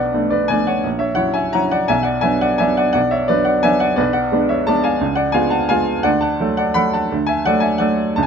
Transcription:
grand piano
Already playing: B1 D5 F#5
0.14 A3 B3 D4
0.30 B4 D5
0.48 A3 B3 D4 D5 G#5
0.67 C#5 F#5
0.84 A#1
0.99 C#5 E5
1.15 F#3 C#4 E4 C#5 F#5
1.34 E5 G#5
1.53 F#3 C#4 E4 F#5 A#5
1.71 D5 F#5
1.88 B1 E5 G#5
2.03 D5 F#5
2.21 F#3 B3 D4 E5 G#5
2.41 D5 F#5
2.58 F#3 B3 D4 E5 G#5
2.77 D5 F#5
2.93 B1 D5 F#5
3.11 C#5 E5
3.28 F#3 B3 D4 B4 D5
3.45 D5 F#5
3.63 F#3 B3 D4 E5 G#5
3.80 D5 F#5
3.96 B1 B4 D5
4.13 D5 F#5
4.32 G#3 B3 D4
4.49 C#5 E5
4.67 G#3 B3 D4 D5 A5
4.84 F5 G#5
5.01 C#2
5.15 D5 F#5
5.32 G#3 B3 F4 F5 G#5
5.50 F#5 A5
5.69 G#3 B3 F4 F5 G#5
6.03 D2 D5 F#5
6.21 F#5 A5
6.40 F#3 A3 A4
6.57 D5 F#5
6.74 F#3 A3 A4 F#5 B5
6.93 F#5 A5
7.12 D2
7.27 E5 G#5
7.45 F#3 A3 A4 D5 F#5
7.60 E5 G#5
7.78 F#3 A3 A4 D5 F#5
8.16 C#2 A5
8.23 G#5

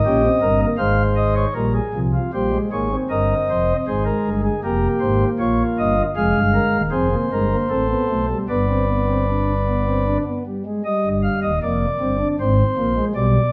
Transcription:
pipe organ
Already playing: D#5
0.05 A#1 A#2 C#4 G4
0.23 C4
0.41 G1 G2 A#4
0.59 A#3
0.77 G#1 G#2 G#3 C5 F5
1.16 D#5
1.35 C#5
1.54 A#1 A#2 G3 A#4
1.74 G#4
1.93 C2 C3 F3
2.13 F4
2.33 A#1 A#2 G3 G4 C5
2.51 G#3
2.72 G#1 G#2 A#3 G#4 C#5
2.90 C4
3.10 G1 G2 A#4 D#5
3.50 F1 F2 C5
3.87 G#1 G#2 G#3 G#4 C5
4.05 A#4
4.26 G1 G2
4.43 G#4
4.63 F1 F2 A#3 G4 A#4
5.00 G#1 G#2 C5
5.39 A#1 A#2 F4 C#5
5.78 G1 G2 D#5
6.16 F1 F2 G#3 G#4 F5
6.35 G1 G2
6.54 A#4
6.73 D#1 D#2
6.91 F1 F2 C4 G#4 C5
7.12 A#3
7.32 G1 G2 G#3 A#4
7.52 A#3
7.70 A1 A2 C4 A4
7.90 B3
8.09 B1 B2 A3
8.29 G3
8.49 G1 G2 B3 B4 D5
8.69 C4
8.88 B3
9.09 C4
9.28 D4
9.67 B3
9.87 C4
10.07 D4
10.26 B3
10.46 G3
10.66 G#3
10.84 G3 D#5
11.05 G1 G2
11.23 F5
11.42 D#1 D#2 D#5
11.62 F1 F2 A#3 D5
12.00 G1 G2 C4
12.19 D4
12.40 G#1 G#2 C4 C5
12.77 A#1 A#2 A#3
12.97 G#3
13.15 B1 B2 G3 D5

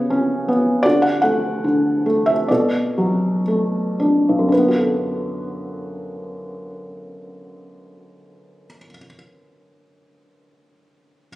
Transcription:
felt piano
Already playing: C#3 B3 F#4 C#5
0.10 C#4
0.48 B3
0.83 D3 F#4 D5
1.02 F#5
1.22 A3 F#5
1.64 D3
2.06 A3
2.26 E5
2.48 B2 A4 D5
2.98 F#3
3.48 A3
4.00 D4
4.29 B1
4.39 F#2
4.49 D3 B4
4.58 B3
4.68 F#4
4.78 A4

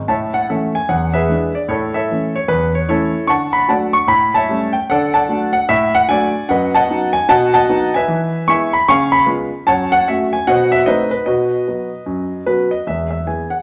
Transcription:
grand piano
0.08 A2 C#5 E5 A5
0.34 F#5
0.49 E3 A3 C#4 A4 C#5 E5
0.75 G#5
0.89 E2 F#5
1.14 G#4 B4 E5
1.29 E3 G#3 D4
1.55 D5
1.68 A2 E4 A4 C#5
1.94 A4 C#5 E5
2.11 E3 A3 C#4
2.36 C#5
2.48 E2 B4
2.75 C#5
2.88 E3 A3 C#4 E4 A4 C#5
3.27 D3 F#5 A5 C#6
3.53 B5
3.68 F#3 A3 D4 D5 F#5 A5
3.93 C#6
4.07 A2 B5
4.34 C#5 E5 A5
4.49 G3 A3 C#4
4.73 G5
4.90 D3 A4 D5 F#5
5.14 D5 F#5 A5
5.29 F#3 A3 D4
5.53 F#5
5.69 A2 E5
5.95 F#5
6.08 F#3 A3 D4 D5 G#5
6.49 F#2 B4 D#5 F#5
6.75 D#5 F#5 A5
6.89 F#3 B3 D#4
7.13 G#5
7.29 B2 D#5 F#5 A5
7.54 D#5 F#5 A5
7.69 F#3 B3 D#4
7.94 B4 E5 G#5
8.08 E3
8.48 G#3 B3 E4 E5 G#5 C#6
8.73 B5
8.88 C#3 F5 G#5 C#6
9.12 B5
9.26 G#3 B3 F4
9.67 F#2 C#5 F#5 A5
9.92 F#5
10.08 A3 C#4 F#4 E5
10.33 G#5
10.47 B2 C5 D#5 F#5
10.72 E5
10.86 A3 C4 D#4 B4 C5 D#5
11.11 B4
11.26 B2 F#4 B4 D#5
11.68 F#3 B3 F#4
12.06 F#2
12.46 F#3 B3 F#4 B4
12.71 D#5
12.87 E2 G#3 E5
13.11 E5
13.27 E3 B3 G#4 G#5
13.50 F#5

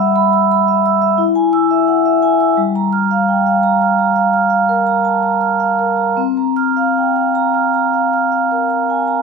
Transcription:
vibraphone
Already playing: G3 F#5 B5 E6
0.00 E5
0.16 B5
0.33 E6
0.52 B5
0.68 E5
0.86 E6
1.02 E5
1.18 E4
1.35 G#5
1.53 E6
1.71 E5
1.88 F#5
2.06 E5
2.22 G#5
2.40 E6
2.57 G3
2.75 A#5
2.93 F6
3.11 F5
3.29 G5
3.46 F5
3.63 A#5
3.82 F6
3.99 A#5
4.16 F5
4.34 F6
4.50 F5
4.69 A#4
4.87 A#5
5.05 A5
5.23 A#5
5.41 F6
5.60 F5
5.79 A#4
5.97 A#5
6.17 C4
6.37 A#5
6.56 F6
6.77 F5
6.98 G5
7.16 F5
7.35 A#5
7.54 F6
7.74 A#5
7.94 F5
8.13 F6
8.32 F5
8.52 A#4
8.70 A#5
8.90 G#5
9.07 A#5

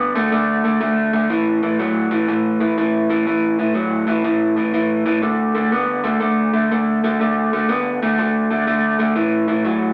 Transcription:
clean electric guitar
Already playing: D3 B3
0.15 D3 A3
0.32 D3 A3
0.64 D3 A3
0.81 D3 A3
1.13 D3 A3
1.30 A2 E3
1.63 A2 E3
1.79 A2 F#3
2.11 A2 E3
2.28 A2 E3
2.60 A2 E3
2.78 A2 E3
3.10 A2 E3
3.27 A2 E3
3.59 A2 E3
3.74 A2 F#3
4.07 A2 E3
4.24 A2 E3
4.57 A2 E3
4.74 A2 E3
5.06 A2 E3
5.22 D3 A3
5.55 D3 A3
5.72 D3 B3
6.04 D3 A3
6.20 D3 A3
6.53 D3 A3
6.71 D3 A3
7.04 D3 A3
7.20 D3 A3
7.53 D3 A3
7.69 D3 B3
8.02 D3 A3
8.18 D3 A3
8.50 D3 A3
8.67 D3 A3
8.99 D3 A3
9.16 A2 E3
9.48 A2 E3
9.65 A2 F#3

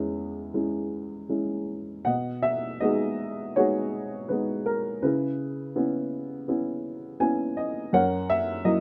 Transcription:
upright piano
Already playing: E2 G#3 C#4 E4 G#4 C#5 E5
0.54 G#3 C#4 E4
1.29 G#3 C#4 E4
2.05 B2 D#5 F#5
2.42 E5
2.80 G#3 B3 D#4 F#4 G#4 D#5
3.56 G#3 B3 D#4 F#4 G#4 C#5
4.28 G#3 B3 D#4 B4
4.66 A#4
5.02 C#3 E4 G#4 B4
5.76 B3 C#4 E4
6.48 B3 C#4 E4
7.20 B3 C#4 E4 G#5
7.57 D#5
7.93 F#2 A#4 C#5 F#5
8.30 E5
8.65 F#3 A#3 E4 D#5

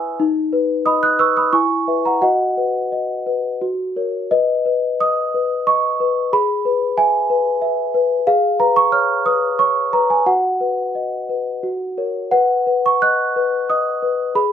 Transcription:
celesta
Already playing: E4 B4 E5 G#5 B5 C#6 D#6 E6
0.20 D#4
0.53 B4
0.86 D#5 B5 D#6
1.03 D#6 F#6
1.19 B4 C#6 E6
1.37 B5 D#6
1.53 E4 G#5 C#6
1.88 B4 E5
2.05 F#5 A#5
2.22 F#4 D#5 F#5
2.57 B4
2.92 D#5
3.27 B4
3.61 F#4
3.96 A#4 C#5
4.31 B4 D#5
4.66 B4
5.01 D#5 D#6
5.34 B4
5.67 D#5 C#6
6.00 B4
6.33 G#4 B5
6.65 B4
6.98 E5 G#5
7.30 B4
7.62 E5
7.94 B4
8.27 G#4 F5
8.60 B4 A#5
8.76 C#6
8.92 C#5 F6
9.26 B4 D#6
9.59 C#5 C#6
9.93 B4 A#5
10.10 G#5
10.26 F#4 F#5
10.61 B4
10.95 D#5
11.29 B4
11.63 F#4
11.98 A#4 C#5
12.31 B4 F#5
12.67 B4
12.86 C#6
13.02 D#5 F#6
13.36 B4
13.70 D#5 D#6
14.02 B4
14.35 G#4 B5

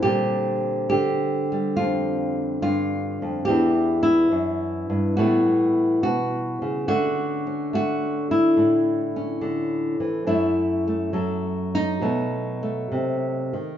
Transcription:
nylon-string guitar
0.03 A#2 D3 G3 C4 G4
0.90 D3 G4
1.52 G3
1.77 F2 F4
2.62 G2 F4
3.22 F2
3.45 E2 E3 G4
3.50 D4
4.03 E4
4.32 F#2
4.90 G2
5.17 A2 E3 G3 B3 F#4
6.03 B2 F#4
6.62 C#3
6.88 D3 A3 C#4 F#4
7.47 C#4
7.73 A3 F#4
8.31 E4
8.57 A2
9.16 C#4
9.41 D3
10.00 E3
10.27 F#2 F#3 A3 E4
10.88 A3
11.13 F#3 A4
11.75 D#4
12.01 B2 F#3 A3
12.63 A3
12.92 C3
13.53 D#3

